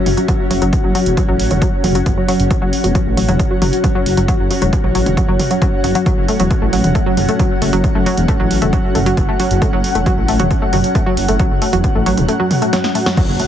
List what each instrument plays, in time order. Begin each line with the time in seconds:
Already playing: synth drone F#3, ambient pad C#4 F#4 F#5
0.06 detuned saw bass F#1, mid tom, open hi-hat
0.17 synth arpeggio sound F#3, closed hi-hat
0.28 synth arpeggio sound F#3, kick, closed hi-hat
0.51 detuned saw bass F#1, synth arpeggio sound F#3, open hi-hat
0.62 detuned saw bass F#1, synth arpeggio sound F#3, closed hi-hat
0.73 kick, closed hi-hat
0.84 detuned saw bass F#1, synth arpeggio sound F#3
0.95 synth arpeggio sound F#3, open hi-hat
1.06 detuned saw bass E1, closed hi-hat
1.17 synth arpeggio sound F#3, kick, closed hi-hat
1.28 detuned saw bass A1, synth arpeggio sound F#3
1.39 detuned saw bass A1, open hi-hat
1.51 detuned saw bass E1, synth arpeggio sound F#3, closed hi-hat, mid tom
1.62 synth arpeggio sound F#3, kick, closed hi-hat
1.84 detuned saw bass F#1, synth arpeggio sound F#3, mid tom, open hi-hat
1.95 synth arpeggio sound F#3, closed hi-hat
2.06 detuned saw bass F#1, kick, closed hi-hat
2.17 synth arpeggio sound F#3
2.28 synth arpeggio sound F#3, open hi-hat
2.40 detuned saw bass F#1, closed hi-hat
2.51 synth arpeggio sound F#3, kick, closed hi-hat
2.62 detuned saw bass F#1, synth arpeggio sound F#3
2.73 open hi-hat
2.84 detuned saw bass E1, synth arpeggio sound F#3, closed hi-hat
2.95 synth arpeggio sound F#3, kick, closed hi-hat
3.06 detuned saw bass A1
3.17 detuned saw bass A1, synth arpeggio sound F#3, open hi-hat
3.28 detuned saw bass E1, synth arpeggio sound F#3, closed hi-hat, mid tom
3.39 kick, closed hi-hat
3.51 synth arpeggio sound F#3
3.62 detuned saw bass F#1, synth arpeggio sound F#3, mid tom, open hi-hat
3.73 closed hi-hat
3.84 synth arpeggio sound F#3, kick, closed hi-hat
3.95 synth arpeggio sound F#3
4.06 detuned saw bass F#1, open hi-hat
4.17 detuned saw bass F#1, synth arpeggio sound F#3, closed hi-hat
4.28 synth arpeggio sound F#3, kick, closed hi-hat
4.40 detuned saw bass F#1
4.51 synth arpeggio sound F#3, open hi-hat
4.62 detuned saw bass E1, synth arpeggio sound F#3, closed hi-hat
4.73 kick, closed hi-hat
4.84 detuned saw bass A1, synth arpeggio sound F#3, mid tom
4.95 detuned saw bass A1, synth arpeggio sound F#3, open hi-hat
5.06 detuned saw bass E1, closed hi-hat, mid tom
5.17 synth arpeggio sound F#3, kick, closed hi-hat
5.28 detuned saw bass F#1, synth arpeggio sound F#3
5.40 mid tom, open hi-hat
5.51 synth arpeggio sound F#3, closed hi-hat
5.62 synth arpeggio sound F#3, kick, closed hi-hat
5.84 detuned saw bass F#1, synth arpeggio sound F#3, open hi-hat
5.95 synth arpeggio sound F#3, closed hi-hat
6.06 synth arpeggio sound F#3, kick, closed hi-hat
6.17 detuned saw bass F#1
6.28 synth arpeggio sound A3, open hi-hat
6.40 detuned saw bass E1, synth arpeggio sound F#3, closed hi-hat
6.51 kick, closed hi-hat
6.62 detuned saw bass A1, synth arpeggio sound A3
6.73 detuned saw bass A1, synth arpeggio sound F#3, open hi-hat
6.84 detuned saw bass E1, closed hi-hat, mid tom
6.95 synth arpeggio sound A3, kick, closed hi-hat
7.06 synth arpeggio sound F#3
7.17 detuned saw bass F#1, mid tom, open hi-hat
7.29 synth arpeggio sound A3, closed hi-hat
7.39 synth arpeggio sound F#3, kick, closed hi-hat
7.62 detuned saw bass F#1, synth arpeggio sound A3, open hi-hat
7.73 detuned saw bass F#1, synth arpeggio sound F#3, closed hi-hat
7.84 kick, closed hi-hat
7.95 detuned saw bass F#1, synth arpeggio sound A3
8.06 synth arpeggio sound F#3, open hi-hat
8.17 detuned saw bass E1, closed hi-hat
8.28 synth arpeggio sound A3, kick, closed hi-hat
8.40 detuned saw bass A1, synth arpeggio sound F#3
8.51 detuned saw bass A1, open hi-hat
8.62 detuned saw bass E1, synth arpeggio sound A3, closed hi-hat, mid tom
8.73 synth arpeggio sound F#3, kick, closed hi-hat
8.95 detuned saw bass F#1, synth arpeggio sound A3, mid tom, open hi-hat
9.06 synth arpeggio sound F#3, closed hi-hat
9.17 detuned saw bass F#1, kick, closed hi-hat
9.29 synth arpeggio sound A3
9.40 synth arpeggio sound F#3, open hi-hat
9.51 detuned saw bass F#1, closed hi-hat
9.62 synth arpeggio sound A3, kick, closed hi-hat
9.73 detuned saw bass F#1, synth arpeggio sound F#3
9.84 open hi-hat
9.95 detuned saw bass E1, synth arpeggio sound A3, closed hi-hat
10.06 synth arpeggio sound F#3, kick, closed hi-hat
10.17 detuned saw bass A1
10.28 detuned saw bass A1, synth arpeggio sound A3, open hi-hat
10.40 detuned saw bass E1, synth arpeggio sound F#3, closed hi-hat, mid tom
10.51 kick, closed hi-hat
10.62 synth arpeggio sound A3
10.73 detuned saw bass F#1, synth arpeggio sound F#3, mid tom, open hi-hat
10.84 closed hi-hat
10.95 synth arpeggio sound A3, kick, closed hi-hat
11.06 synth arpeggio sound F#3
11.17 detuned saw bass F#1, open hi-hat
11.28 detuned saw bass F#1, synth arpeggio sound A3, closed hi-hat
11.39 synth arpeggio sound F#3, kick, closed hi-hat
11.51 detuned saw bass F#1
11.62 synth arpeggio sound A3, open hi-hat
11.73 detuned saw bass E1, synth arpeggio sound F#3, closed hi-hat
11.84 kick, closed hi-hat
11.95 detuned saw bass A1, synth arpeggio sound A3
12.06 detuned saw bass A1, synth arpeggio sound F#3, open hi-hat
12.17 detuned saw bass E1, closed hi-hat, mid tom
12.28 synth arpeggio sound A3, closed hi-hat
12.40 synth arpeggio sound F#3
12.51 mid tom, open hi-hat
12.62 synth arpeggio sound A3, closed hi-hat
12.73 synth arpeggio sound F#3, snare, closed hi-hat
12.84 snare
12.95 synth arpeggio sound A3, open hi-hat
13.06 synth arpeggio sound F#3, snare, closed hi-hat
13.17 synth arpeggio sound F#3, synth drone F#3, ambient pad C#4, kick, closed hi-hat, crash, impact
13.29 detuned saw bass F#1
13.40 synth arpeggio sound A3, open hi-hat